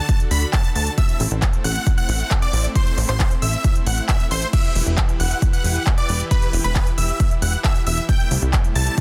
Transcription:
Already playing: supersaw synth D3 D4 F#4 A4 A5, synth pluck A6
0.09 kick, closed hi-hat
0.20 closed hi-hat
0.31 analog synth bass D2, supersaw synth B5, synth pluck B6, open hi-hat
0.42 closed hi-hat
0.53 supersaw synth A5, synth pluck A6, kick, clap, closed hi-hat
0.64 closed hi-hat
0.75 analog synth bass D2, supersaw synth A5, synth pluck A6, open hi-hat
0.87 closed hi-hat
0.98 supersaw synth A3 C4 E4 E5, synth pluck E6, kick, closed hi-hat
1.09 closed hi-hat
1.20 analog synth bass A1, open hi-hat
1.31 analog synth bass A1, closed hi-hat
1.42 kick, clap, closed hi-hat
1.53 closed hi-hat
1.64 analog synth bass A1, supersaw synth F#5, synth pluck F#6, open hi-hat
1.76 closed hi-hat
1.87 kick, closed hi-hat
1.98 supersaw synth F#5, synth pluck F#6, closed hi-hat
2.09 analog synth bass A1, open hi-hat
2.20 closed hi-hat
2.31 kick, clap, closed hi-hat
2.42 supersaw synth D5, synth pluck D6, closed hi-hat
2.53 analog synth bass A1, open hi-hat
2.64 closed hi-hat
2.75 supersaw synth C5, synth pluck C6, kick, closed hi-hat
2.87 closed hi-hat
2.98 analog synth bass A1, open hi-hat
3.09 analog synth bass A1, supersaw synth C5, synth pluck C6, clap, closed hi-hat
3.20 kick, clap, closed hi-hat
3.31 closed hi-hat
3.42 analog synth bass A1, supersaw synth E5, synth pluck E6, open hi-hat
3.53 closed hi-hat
3.64 kick, closed hi-hat
3.75 closed hi-hat
3.87 analog synth bass A1, supersaw synth F#5, synth pluck F#6, open hi-hat
3.98 closed hi-hat
4.09 supersaw synth E5, synth pluck E6, kick, clap, closed hi-hat
4.20 closed hi-hat
4.31 analog synth bass A1, supersaw synth C5, synth pluck C6, open hi-hat
4.42 closed hi-hat
4.53 supersaw synth E3 G4 B4 E5, synth pluck E6, kick, closed hi-hat, crash
4.64 closed hi-hat
4.75 analog synth bass E1, open hi-hat
4.86 analog synth bass E1, closed hi-hat
4.98 kick, clap, closed hi-hat
5.09 closed hi-hat
5.20 analog synth bass E1, supersaw synth F#5, synth pluck F#6, open hi-hat
5.31 closed hi-hat
5.42 kick, closed hi-hat
5.53 supersaw synth F#5, synth pluck F#6, closed hi-hat
5.64 analog synth bass E1, open hi-hat
5.76 closed hi-hat
5.87 kick, clap, closed hi-hat
5.98 supersaw synth D5, synth pluck D6, closed hi-hat
6.09 analog synth bass E1, open hi-hat
6.20 closed hi-hat
6.31 supersaw synth B4, synth pluck B5, kick, closed hi-hat
6.42 closed hi-hat
6.53 analog synth bass E1, open hi-hat
6.64 analog synth bass E1, supersaw synth B4, synth pluck B5, closed hi-hat
6.75 kick, clap, closed hi-hat
6.87 closed hi-hat
6.98 analog synth bass E1, supersaw synth E5, synth pluck E6, open hi-hat
7.09 closed hi-hat
7.20 kick, closed hi-hat
7.31 closed hi-hat
7.42 analog synth bass E1, supersaw synth F#5, synth pluck F#6, open hi-hat
7.53 closed hi-hat
7.64 supersaw synth E5, synth pluck E6, kick, clap, closed hi-hat
7.76 closed hi-hat
7.87 analog synth bass E1, supersaw synth E5, synth pluck E6, open hi-hat
7.98 closed hi-hat
8.09 supersaw synth C3 G3 A3 G5, synth pluck G6, kick, closed hi-hat
8.20 closed hi-hat
8.31 analog synth bass C2, open hi-hat
8.42 analog synth bass C2, closed hi-hat
8.53 kick, clap, closed hi-hat
8.64 closed hi-hat
8.75 analog synth bass C2, supersaw synth A5, synth pluck A6, open hi-hat
8.87 closed hi-hat
8.98 kick, closed hi-hat

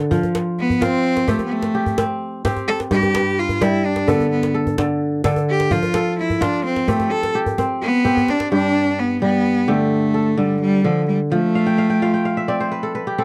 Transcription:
Already playing: kora D3 A4
0.11 kora F3 F4, djembe slap, djembe bass
0.23 djembe slap, djembe tone
0.35 djembe slap
0.59 cello B3, djembe slap
0.70 djembe slap, djembe bass
0.81 cello C4, kora F4, djembe slap, djembe tone
1.17 djembe slap
1.28 cello A3, kora C4 G4, djembe bass
1.39 djembe tone
1.45 cello B3
1.52 cello A3
1.62 djembe slap
1.75 kora G4, djembe slap
1.86 djembe slap, djembe bass
1.98 kora C4, djembe slap, djembe tone
2.45 kora C4 G4, djembe slap, djembe bass
2.57 djembe tone
2.68 cello A4
2.80 djembe slap
2.91 kora G2 G4, cello G4, djembe slap, djembe bass
3.03 djembe slap, djembe tone
3.14 kora B4, djembe slap
3.38 cello F4, djembe slap
3.49 djembe slap, djembe bass
3.61 kora G3, cello E4, djembe slap, djembe tone
3.85 cello D4
3.96 djembe slap
4.08 kora D3 A4, cello B3, djembe bass
4.20 djembe tone
4.31 cello B3
4.43 djembe slap
4.54 kora A4, djembe slap
4.67 djembe slap, djembe bass
4.78 kora D3, djembe slap, djembe tone
5.24 kora D3 A4, djembe slap, djembe bass
5.36 djembe tone
5.50 cello G4
5.60 djembe slap
5.71 kora F3 F4, cello F4, djembe slap, djembe bass
5.83 djembe tone
5.94 kora A4, djembe slap
6.06 djembe slap
6.18 cello E4
6.30 djembe slap, djembe bass
6.41 cello D4, kora F4, djembe slap, djembe tone
6.65 cello C4, djembe slap
6.76 djembe slap
6.88 cello A3, kora C4 G4, djembe bass
7.00 djembe slap, djembe tone
7.11 cello A4
7.23 djembe slap
7.35 kora G4, djembe slap
7.46 djembe bass
7.58 kora C4, djembe tone
7.82 cello B3
8.05 kora C4 G4, djembe bass
8.17 djembe bass
8.28 cello D4, djembe slap
8.40 djembe slap
8.52 kora G2 G4, cello D4
9.00 cello B3
9.22 kora G3, cello B3
9.68 kora D3 G4, cello A3
10.14 kora A4
10.38 kora D3, cello G3
10.61 cello G3
10.84 kora D3, cello F3
11.08 cello G3
11.31 kora F3, cello A3
11.55 kora F5
11.66 kora G5
11.78 kora F5
11.90 kora G5
12.02 kora F4 F5
12.14 kora G5
12.25 kora F5
12.37 kora E5
12.48 kora C4 D5
12.60 kora C5
12.72 kora B4
12.83 kora A4
12.95 kora B4
13.07 kora G4
13.18 kora C4 A4

